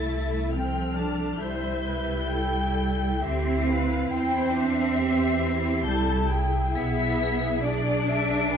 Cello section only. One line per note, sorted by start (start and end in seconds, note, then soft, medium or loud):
0.00 0.50 A3 medium
0.54 1.41 F3 medium
1.41 3.18 G3 medium
3.22 4.10 C4 medium
4.11 5.84 C4 loud
5.88 6.31 G3 medium
6.75 7.60 B3 loud
7.64 8.57 D4 loud